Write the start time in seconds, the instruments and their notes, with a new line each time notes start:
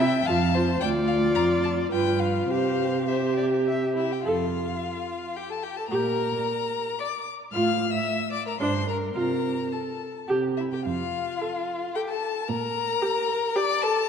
Already playing: cello C3, violin E5
0.00 viola E4, violin G5
0.26 cello F2, viola F4, violin F5 A5
0.55 viola F4, violin C5
0.80 cello D2, viola F4, violin D5 G5
1.07 violin F5
1.35 cello F2, violin A#5
1.64 violin A5
1.92 cello G2, viola F4, violin B4 G5
2.20 violin F5
2.49 cello C3, viola G4, violin C5 F5
3.08 viola G4, violin C5 E5
3.37 violin D5
3.66 violin E5
3.96 violin E4 E5
4.12 violin G4 G5
4.24 cello F2, violin F4 F5, viola A4
5.36 violin G4 G5
5.49 violin A4 A5
5.63 violin G4 G5
5.77 violin A4 A5
5.89 cello A#2, viola G4, violin A#4 A#5
6.99 violin D5 D6
7.52 cello A2, viola F4, violin F5 F6
7.91 violin E5 E6
8.32 violin D5 D6
8.47 violin A#4 A#5
8.60 cello G2, viola D4, violin C5 C6
8.88 violin A#4 A#5
9.15 cello C3, viola F4, violin A#4 A#5
9.72 violin A4 A5
10.28 cello C3, viola G4
10.57 violin E4 E5
10.72 violin G4 G5
10.85 cello F2, violin F4 F5
11.42 viola A4
11.95 violin G4 G5, viola A4
12.09 violin A4 A5
12.49 cello A#2, violin A#4 A#5
13.02 viola G4
13.56 viola G4, violin D5 D6
13.82 violin A4 A5